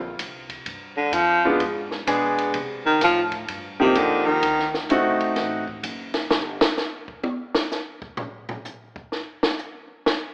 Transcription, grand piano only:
1.45 G#3 B3 D4 F4
2.07 G#3 B3 D4 G#4
3.80 F3 A#3 D#4 G4
4.90 A3 C4 D#4 F#4

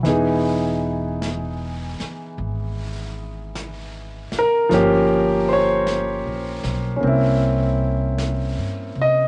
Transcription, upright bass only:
0.05 E1
2.01 muted upright bass stroke
2.38 G#1
4.33 muted upright bass stroke
4.71 G1
6.26 A#1
6.64 B1
7.03 C2
8.58 G2
8.96 C3

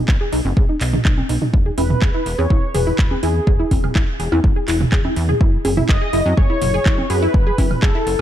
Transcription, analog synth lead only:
1.78 B4
2.38 C#5
2.74 B4
3.23 G#4
5.89 D#5
6.37 C#5
7.10 B4
7.82 A4

